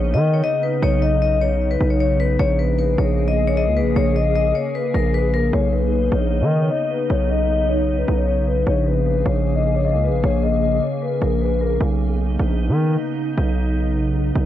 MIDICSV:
0, 0, Header, 1, 4, 480
1, 0, Start_track
1, 0, Tempo, 392157
1, 1011, Time_signature, 4, 2, 24, 8
1, 17694, End_track
2, 0, Start_track
2, 0, Title_t, "Vibraphone"
2, 0, Program_c, 0, 11
2, 0, Note_on_c, 0, 73, 74
2, 149, Note_off_c, 0, 73, 0
2, 170, Note_on_c, 0, 75, 78
2, 381, Note_off_c, 0, 75, 0
2, 410, Note_on_c, 0, 73, 68
2, 516, Note_off_c, 0, 73, 0
2, 534, Note_on_c, 0, 75, 93
2, 743, Note_off_c, 0, 75, 0
2, 772, Note_on_c, 0, 71, 80
2, 982, Note_off_c, 0, 71, 0
2, 1015, Note_on_c, 0, 73, 110
2, 1224, Note_off_c, 0, 73, 0
2, 1250, Note_on_c, 0, 75, 85
2, 1461, Note_off_c, 0, 75, 0
2, 1491, Note_on_c, 0, 75, 79
2, 1702, Note_off_c, 0, 75, 0
2, 1730, Note_on_c, 0, 73, 81
2, 2068, Note_off_c, 0, 73, 0
2, 2091, Note_on_c, 0, 71, 81
2, 2301, Note_off_c, 0, 71, 0
2, 2330, Note_on_c, 0, 73, 68
2, 2436, Note_off_c, 0, 73, 0
2, 2453, Note_on_c, 0, 73, 85
2, 2663, Note_off_c, 0, 73, 0
2, 2691, Note_on_c, 0, 71, 87
2, 2902, Note_off_c, 0, 71, 0
2, 2930, Note_on_c, 0, 73, 115
2, 3141, Note_off_c, 0, 73, 0
2, 3170, Note_on_c, 0, 71, 86
2, 3381, Note_off_c, 0, 71, 0
2, 3411, Note_on_c, 0, 71, 83
2, 3622, Note_off_c, 0, 71, 0
2, 3651, Note_on_c, 0, 73, 69
2, 3989, Note_off_c, 0, 73, 0
2, 4012, Note_on_c, 0, 75, 73
2, 4222, Note_off_c, 0, 75, 0
2, 4253, Note_on_c, 0, 73, 83
2, 4357, Note_off_c, 0, 73, 0
2, 4373, Note_on_c, 0, 75, 89
2, 4583, Note_off_c, 0, 75, 0
2, 4612, Note_on_c, 0, 71, 84
2, 4822, Note_off_c, 0, 71, 0
2, 4853, Note_on_c, 0, 73, 109
2, 5063, Note_off_c, 0, 73, 0
2, 5092, Note_on_c, 0, 75, 84
2, 5302, Note_off_c, 0, 75, 0
2, 5330, Note_on_c, 0, 75, 96
2, 5541, Note_off_c, 0, 75, 0
2, 5570, Note_on_c, 0, 73, 81
2, 5781, Note_off_c, 0, 73, 0
2, 5814, Note_on_c, 0, 71, 83
2, 6024, Note_off_c, 0, 71, 0
2, 6055, Note_on_c, 0, 70, 82
2, 6264, Note_off_c, 0, 70, 0
2, 6293, Note_on_c, 0, 71, 88
2, 6503, Note_off_c, 0, 71, 0
2, 6532, Note_on_c, 0, 70, 81
2, 6742, Note_off_c, 0, 70, 0
2, 6770, Note_on_c, 0, 73, 98
2, 6981, Note_off_c, 0, 73, 0
2, 7010, Note_on_c, 0, 71, 79
2, 7221, Note_off_c, 0, 71, 0
2, 7251, Note_on_c, 0, 71, 75
2, 7462, Note_off_c, 0, 71, 0
2, 7490, Note_on_c, 0, 73, 71
2, 7829, Note_off_c, 0, 73, 0
2, 7849, Note_on_c, 0, 75, 73
2, 8060, Note_off_c, 0, 75, 0
2, 8090, Note_on_c, 0, 73, 66
2, 8196, Note_off_c, 0, 73, 0
2, 8211, Note_on_c, 0, 75, 91
2, 8422, Note_off_c, 0, 75, 0
2, 8449, Note_on_c, 0, 71, 78
2, 8660, Note_off_c, 0, 71, 0
2, 8692, Note_on_c, 0, 73, 107
2, 8902, Note_off_c, 0, 73, 0
2, 8929, Note_on_c, 0, 75, 83
2, 9141, Note_off_c, 0, 75, 0
2, 9172, Note_on_c, 0, 75, 73
2, 9382, Note_off_c, 0, 75, 0
2, 9411, Note_on_c, 0, 73, 82
2, 9749, Note_off_c, 0, 73, 0
2, 9771, Note_on_c, 0, 71, 79
2, 9982, Note_off_c, 0, 71, 0
2, 10008, Note_on_c, 0, 73, 64
2, 10115, Note_off_c, 0, 73, 0
2, 10132, Note_on_c, 0, 73, 88
2, 10342, Note_off_c, 0, 73, 0
2, 10372, Note_on_c, 0, 71, 86
2, 10582, Note_off_c, 0, 71, 0
2, 10612, Note_on_c, 0, 73, 110
2, 10822, Note_off_c, 0, 73, 0
2, 10852, Note_on_c, 0, 71, 84
2, 11062, Note_off_c, 0, 71, 0
2, 11093, Note_on_c, 0, 71, 83
2, 11303, Note_off_c, 0, 71, 0
2, 11333, Note_on_c, 0, 73, 71
2, 11670, Note_off_c, 0, 73, 0
2, 11693, Note_on_c, 0, 75, 71
2, 11903, Note_off_c, 0, 75, 0
2, 11933, Note_on_c, 0, 73, 80
2, 12038, Note_off_c, 0, 73, 0
2, 12056, Note_on_c, 0, 75, 85
2, 12264, Note_off_c, 0, 75, 0
2, 12293, Note_on_c, 0, 71, 82
2, 12503, Note_off_c, 0, 71, 0
2, 12534, Note_on_c, 0, 73, 109
2, 12743, Note_off_c, 0, 73, 0
2, 12772, Note_on_c, 0, 75, 86
2, 12982, Note_off_c, 0, 75, 0
2, 13011, Note_on_c, 0, 75, 88
2, 13222, Note_off_c, 0, 75, 0
2, 13252, Note_on_c, 0, 73, 81
2, 13462, Note_off_c, 0, 73, 0
2, 13491, Note_on_c, 0, 71, 84
2, 13702, Note_off_c, 0, 71, 0
2, 13732, Note_on_c, 0, 70, 79
2, 13942, Note_off_c, 0, 70, 0
2, 13973, Note_on_c, 0, 71, 87
2, 14183, Note_off_c, 0, 71, 0
2, 14211, Note_on_c, 0, 70, 83
2, 14422, Note_off_c, 0, 70, 0
2, 17694, End_track
3, 0, Start_track
3, 0, Title_t, "Ambient pad"
3, 0, Program_c, 1, 92
3, 0, Note_on_c, 1, 49, 83
3, 0, Note_on_c, 1, 59, 77
3, 0, Note_on_c, 1, 63, 87
3, 2891, Note_off_c, 1, 59, 0
3, 2892, Note_off_c, 1, 63, 0
3, 2931, Note_on_c, 1, 68, 92
3, 2932, Note_on_c, 1, 58, 75
3, 6721, Note_off_c, 1, 49, 0
3, 6733, Note_off_c, 1, 58, 0
3, 6733, Note_off_c, 1, 68, 0
3, 6769, Note_on_c, 1, 49, 79
3, 6769, Note_on_c, 1, 59, 73
3, 6769, Note_on_c, 1, 63, 91
3, 10571, Note_off_c, 1, 63, 0
3, 10572, Note_off_c, 1, 59, 0
3, 10608, Note_on_c, 1, 58, 72
3, 10608, Note_on_c, 1, 68, 88
3, 14411, Note_off_c, 1, 58, 0
3, 14411, Note_off_c, 1, 68, 0
3, 14450, Note_on_c, 1, 59, 74
3, 14450, Note_on_c, 1, 63, 88
3, 17694, Note_off_c, 1, 49, 0
3, 17694, Note_off_c, 1, 59, 0
3, 17694, Note_off_c, 1, 63, 0
3, 17694, End_track
4, 0, Start_track
4, 0, Title_t, "808-style bass"
4, 0, Program_c, 2, 38
4, 0, Note_on_c, 2, 34, 109
4, 169, Note_on_c, 2, 51, 102
4, 188, Note_off_c, 2, 34, 0
4, 512, Note_off_c, 2, 51, 0
4, 1010, Note_on_c, 2, 35, 111
4, 2162, Note_off_c, 2, 35, 0
4, 2210, Note_on_c, 2, 35, 105
4, 2901, Note_off_c, 2, 35, 0
4, 2930, Note_on_c, 2, 34, 111
4, 3621, Note_off_c, 2, 34, 0
4, 3650, Note_on_c, 2, 34, 108
4, 4490, Note_on_c, 2, 37, 102
4, 4508, Note_off_c, 2, 34, 0
4, 4670, Note_on_c, 2, 34, 101
4, 4688, Note_off_c, 2, 37, 0
4, 4841, Note_off_c, 2, 34, 0
4, 4850, Note_on_c, 2, 34, 109
4, 5541, Note_off_c, 2, 34, 0
4, 6050, Note_on_c, 2, 34, 103
4, 6741, Note_off_c, 2, 34, 0
4, 6770, Note_on_c, 2, 35, 107
4, 7461, Note_off_c, 2, 35, 0
4, 7490, Note_on_c, 2, 34, 107
4, 7850, Note_on_c, 2, 51, 100
4, 7868, Note_off_c, 2, 34, 0
4, 8192, Note_off_c, 2, 51, 0
4, 8690, Note_on_c, 2, 35, 108
4, 9842, Note_off_c, 2, 35, 0
4, 9891, Note_on_c, 2, 35, 100
4, 10582, Note_off_c, 2, 35, 0
4, 10610, Note_on_c, 2, 34, 107
4, 11301, Note_off_c, 2, 34, 0
4, 11330, Note_on_c, 2, 34, 106
4, 12170, Note_on_c, 2, 37, 100
4, 12188, Note_off_c, 2, 34, 0
4, 12350, Note_on_c, 2, 34, 94
4, 12369, Note_off_c, 2, 37, 0
4, 12522, Note_off_c, 2, 34, 0
4, 12530, Note_on_c, 2, 34, 106
4, 13222, Note_off_c, 2, 34, 0
4, 13730, Note_on_c, 2, 34, 101
4, 14421, Note_off_c, 2, 34, 0
4, 14450, Note_on_c, 2, 35, 111
4, 15142, Note_off_c, 2, 35, 0
4, 15170, Note_on_c, 2, 34, 109
4, 15529, Note_on_c, 2, 51, 101
4, 15547, Note_off_c, 2, 34, 0
4, 15872, Note_off_c, 2, 51, 0
4, 16371, Note_on_c, 2, 35, 107
4, 17523, Note_off_c, 2, 35, 0
4, 17571, Note_on_c, 2, 35, 99
4, 17694, Note_off_c, 2, 35, 0
4, 17694, End_track
0, 0, End_of_file